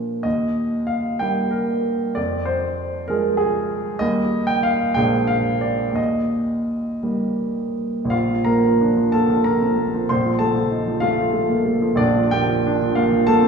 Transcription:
Already playing: A#2 F3 A#3 D4 A#4
0.23 D#2 D#5
0.87 F5
1.19 G3 A#3 D#4 G5
1.51 A#4
2.15 F2 D5
2.46 C5
3.08 F3 G#3 G#4 A#4
3.37 G#4
3.99 D#2 G3 A#3 D#4 D#5
4.47 G5
4.63 F5
4.94 A#1 G#3 A#3 D4 G5
5.27 F5
5.61 D5
5.92 D#2 D#5
7.03 G3 A#3 D#4
8.05 A#1
8.10 F4 F5
8.29 F3
8.45 A#3 A#4 A#5
8.64 F3
8.81 D4
8.97 F3
9.12 A#3 A4 A5
9.30 F3
9.44 A#3 A#4 A#5
9.61 C4
9.78 A#3
9.94 F3
10.09 A#1 C5 C6
10.26 F3
10.39 A3 A4 A5
10.55 F3
10.71 D#4
10.87 F3
11.00 A3 F4 F5
11.18 F3
11.33 A3
11.49 A#3
11.65 A3
11.82 F3
11.95 A#1 D4 D5
12.16 F3
12.31 A#3 G4 G5
12.49 F3
12.66 D4
12.82 F3
12.95 A#3 F4 F5
13.12 F3
13.27 A#3 A4 A5
13.43 C4

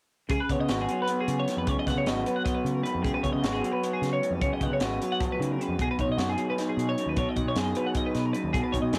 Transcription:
0.29 C#2 C#3 G#4, kick, closed hi-hat
0.40 B4
0.49 C#3 B3 C#5, kick, closed hi-hat
0.59 C#3 D#5
0.69 G#1 F#4, snare, closed hi-hat
0.81 G#4
0.89 F#3, closed hi-hat
1.02 B4
1.08 B3, closed hi-hat
1.20 G#4
1.28 C#3, closed hi-hat
1.39 C#5
1.48 G#2, snare, closed hi-hat
1.57 F2 B4
1.66 C#2 C#3 C#5, kick, closed hi-hat
1.79 D#5
1.87 C#3 B3 F#5, kick, snare, closed hi-hat
1.95 C#3 C#5
2.05 G#1 F#4 D#5, snare, closed hi-hat
2.26 F#3 B4, closed hi-hat
2.36 F#5
2.44 B3 D#5, kick, closed hi-hat
2.54 B4
2.64 C#3, closed hi-hat
2.74 A#4
2.82 G#2 B4, closed hi-hat
2.95 F2
3.02 C#2 C#3 G#4, kick, closed hi-hat
3.14 B4
3.23 C#3 B3 C#5, kick, closed hi-hat
3.33 C#3 D#5
3.43 G#1 F#4, snare, closed hi-hat
3.52 G#4
3.61 F#3, closed hi-hat
3.72 B4
3.82 B3, closed hi-hat
3.93 G#4
4.02 C#3, snare, closed hi-hat
4.13 C#5
4.22 G#2, closed hi-hat
4.30 F2 B4
4.41 C#2 C#3 C#5, kick, closed hi-hat
4.53 D#5
4.61 C#3 B3 F#5, kick, closed hi-hat
4.71 C#3 C#5
4.80 G#1 F#4 D#5, snare, closed hi-hat
5.01 F#3 B4, closed hi-hat
5.12 F#5
5.20 F3 D#5, kick, closed hi-hat
5.32 B4
5.39 C#3 D#3, closed hi-hat
5.52 A#4
5.58 C#3 B4, closed hi-hat
5.68 F2
5.79 B1 B2 G#4, kick, closed hi-hat
5.91 B4
5.98 B2 D#4 C#5, kick, closed hi-hat
6.09 B2 D#5
6.17 F#2 F#4, snare, closed hi-hat
6.29 G#4
6.37 F#3, closed hi-hat
6.50 B4
6.58 D#4, snare, closed hi-hat
6.69 G#4
6.77 B2, closed hi-hat
6.89 C#5
6.98 F#2, closed hi-hat
7.06 D#2 B4
7.16 B1 B2 C#5, kick, closed hi-hat
7.29 D#5
7.36 B2 D#4 F#5, kick, closed hi-hat
7.46 B2 C#5
7.55 F#2 G#4 D#5, snare, closed hi-hat
7.75 F#3 B4, closed hi-hat
7.86 F#5
7.95 D#4 D#5, kick, closed hi-hat
8.06 B4
8.15 B2, snare, closed hi-hat
8.26 A#4
8.33 F#2 B4, closed hi-hat
8.44 D#2
8.53 B1 B2 G#4, kick, closed hi-hat
8.64 B4
8.72 B2 D#4 C#5, kick, closed hi-hat
8.82 B2 D#5
8.92 F#2 G#4, snare, closed hi-hat

